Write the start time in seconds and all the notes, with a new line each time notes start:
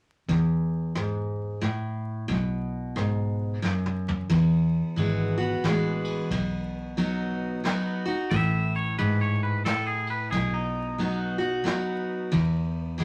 0.28 E2, kick
0.95 G#2, cross-stick
1.61 A2, cross-stick
2.28 B1 B2, kick
2.96 G#2, cross-stick
3.62 F#2, snare
3.86 mid tom
4.08 floor tom
4.30 E2, kick, ride
4.96 G#1 E3 G#3 B3 F#4, ride
5.38 B3 F#4
5.64 A1 E3 G#3 B3 F#4, snare, ride
6.05 ride
6.31 B1 B2, kick, ride
6.97 F#3 B3 D#4 F#4, ride
7.64 F#3 B3 D#4 F#4, snare, ride
8.05 D#4 F#4
8.31 A1 A2 E5, kick, ride
8.76 C#5
8.98 G#2 B4, ride
9.21 C#5
9.43 B4
9.65 A2 A4, snare, ride
9.87 G#4
10.07 B4, ride
10.31 B1 B2 G#4, kick, ride
10.54 D#4
10.98 F#3 B3 D#4 F#4, ride
11.38 D#4 F#4
11.64 F#3 B3 D#4 F#4, snare, ride
12.32 E2, kick, ride
12.98 E3 G#3 B3 E4, ride